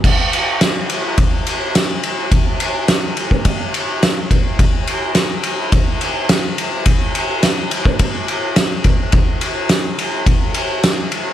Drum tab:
CC |x---------------|----------------|----------------|----------------|
RD |--x-x-x-x-x-x-x-|x-x-x-x-x-x-x-x-|x-x-x-x-x-x-x-x-|x-x-x-x-x-x-x-x-|
SD |----o-------o---|----o-------o---|----o-------o---|----o-------o---|
BD |o-------o-------|o------oo-----o-|o-------o-------|o------oo-----o-|

CC |----------------|
RD |x-x-x-x-x-x-x-x-|
SD |----o-------o---|
BD |o-------o-------|